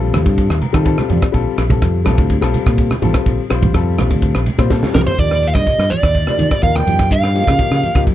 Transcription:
Already playing: A#1 G3 C4 F4 A4
0.13 D#2, cross-stick, ride, high conga, low conga
0.26 G2, kick, ride
0.38 kick, ride
0.50 D#2, cross-stick
0.62 A#5, ride, high conga
0.73 D#3 G3 C4 F4 A4 G5, kick, cross-stick, ride
0.85 G3 C4 F4 A4 F5, kick, ride
0.98 cross-stick, high conga
1.10 F2 D5, ride, low conga
1.22 kick, cross-stick, ride
1.32 A#1 G3 C4 F4 A4, kick, ride
1.58 A#1, cross-stick, ride
1.70 G3 C4 F4 A4, kick, ride, high conga
1.82 F2, kick, cross-stick, ride
2.05 A#1 G3 C4 F4 A4, cross-stick, ride, high conga, low conga
2.18 D2, kick, ride
2.30 kick, ride
2.41 A#1 G3 C4 F4 A4, cross-stick
2.54 ride, high conga
2.66 A#2, kick, cross-stick, ride
2.78 kick, ride
2.91 cross-stick, high conga
3.02 A1 G3 C4 F4 A4, ride, low conga
3.14 kick, cross-stick, ride
3.26 A#1, kick, ride
3.50 A#1 G3 C4 F4 C5, cross-stick, ride
3.63 kick, ride, high conga, low conga
3.74 F2 G3 C4 F4 A4, kick, cross-stick, ride
3.98 A#1, cross-stick, ride, high conga, low conga
4.11 D2, kick, ride
4.22 kick, ride
4.35 A#1, cross-stick
4.46 ride, high conga
4.58 A#2 G3 C4 F4 C5, kick, cross-stick, ride
4.70 G3 C4 F4 A4, kick, snare
4.83 snare, high conga
4.94 C2 A#4, snare, low conga
5.07 C5, floor tom
5.19 D#2 F3 A#3 D#4 G4 D5, kick, ride
5.31 cross-stick
5.43 ride
5.47 F5
5.55 G2 D#5, kick, cross-stick, ride, high conga
5.67 kick, ride
5.78 G2, cross-stick
5.90 D5, ride, low conga
6.03 D#2, kick, cross-stick, ride
6.15 kick, ride
6.27 F3 A#3 D#4 G4, cross-stick, high conga
6.38 D#3, ride, high conga, low conga
6.51 kick, cross-stick, ride
6.62 D#2 F3 A#3 D#4 A#4 F5, kick, ride
6.76 G5, cross-stick, high conga
6.86 F#2 F3 A#3 D#4 G4, ride, low conga
6.99 kick, cross-stick, ride
7.11 G2 F5, kick, ride
7.23 cross-stick
7.34 F3 A#3 D#4 G4, ride
7.47 C#3, kick, cross-stick, ride, high conga
7.59 F3 A#3 D#4 G4, kick, ride
7.71 C#3, cross-stick
7.83 ride, low conga
7.94 C#2 F3 A#3 D#4 G4, kick, cross-stick, ride
8.07 F#2, kick, ride

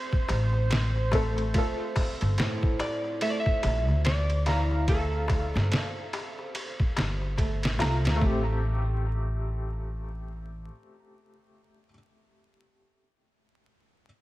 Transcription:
Already playing: A3 C4 G4 C5
0.12 kick, darbuka tek
0.28 A1, ride, darbuka tek
0.53 darbuka tek
0.70 snare, ride, darbuka tek
0.96 darbuka tek
1.11 A3 C4 A4, kick, ride, darbuka tek
1.37 ride, darbuka tek
1.54 A3 F4, kick, ride, darbuka tek
1.58 A4
1.79 darbuka tek
1.96 kick, open hi-hat, darbuka tek
2.21 G1, ride, darbuka tek
2.38 A2, snare, ride, darbuka tek
2.62 kick, darbuka tek
2.79 D5, ride, darbuka tek
3.04 darbuka tek
3.21 A3 E5, ride, darbuka tek
3.30 D5
3.40 E5
3.46 kick, darbuka tek
3.63 A#1 D4, ride, darbuka tek
3.88 D2, darbuka tek
4.05 D5, snare, ride, darbuka tek
4.30 ride, darbuka tek
4.46 E3 F5 A#5, snare, ride, darbuka tek
4.71 darbuka tek
4.88 A3 A4 F5, kick, ride, darbuka tek
5.13 darbuka tek
5.28 kick, ride, darbuka tek
5.54 G1, snare, darbuka tek
5.71 D4, snare, ride, darbuka tek
5.96 darbuka tek
6.13 ride, darbuka tek
6.39 darbuka tek
6.46 G4
6.55 ride, darbuka tek
6.80 kick, darbuka tek
6.96 G1, snare, ride, darbuka tek
7.22 darbuka tek
7.38 A3, kick, ride, darbuka tek
7.62 snare, ride, darbuka tek
7.79 C2 A3 F4 A#5, snare, ride, darbuka tek
8.05 D2, snare, ride, darbuka tek
8.16 A3
8.21 A1 A3 C4, kick
8.26 G4

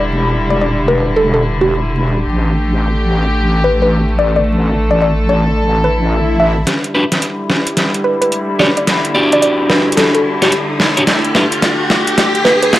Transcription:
Already playing: E1 D3 G3 E4
0.50 D5
0.61 D5
0.88 B4
1.16 A4
1.34 A4
1.61 G4
2.27 A1 A3 G4
3.64 B4
3.82 B4
4.19 D5
4.36 D5
4.47 A4
4.91 D5
5.02 D5
5.29 D5
5.57 swell
5.84 B4
6.40 E5
6.67 D3 G3 E4, snare, closed hi-hat, riser
6.84 closed hi-hat
6.95 D4 F#4 G4 B4
7.12 snare, closed hi-hat
7.22 closed hi-hat
7.50 snare
7.67 closed hi-hat
7.77 snare, closed hi-hat
7.94 closed hi-hat
8.04 B4
8.22 B4, closed hi-hat
8.32 closed hi-hat
8.59 D4 F#4 G4 C#5 D5, snare
8.77 D5, closed hi-hat
8.87 snare, closed hi-hat
9.05 closed hi-hat
9.15 D4 F#4 G4 D5
9.32 D5, closed hi-hat
9.42 D5, closed hi-hat
9.70 B4, snare
9.92 closed hi-hat
9.97 A4, snare, closed hi-hat
10.15 A4, closed hi-hat
10.42 D4 F#4 G4 C#5, snare, closed hi-hat
10.52 closed hi-hat
10.80 snare
10.97 D4 F#4 G4 C#5, closed hi-hat
11.07 A3 G4, snare, closed hi-hat
11.25 closed hi-hat
11.35 D4 E4 G4 B4, snare
11.52 closed hi-hat
11.62 snare, closed hi-hat
11.90 snare
12.07 closed hi-hat
12.18 snare, closed hi-hat
12.35 closed hi-hat
12.45 B4, snare
12.62 B4, closed hi-hat
12.73 snare, closed hi-hat
12.76 closed hi-hat

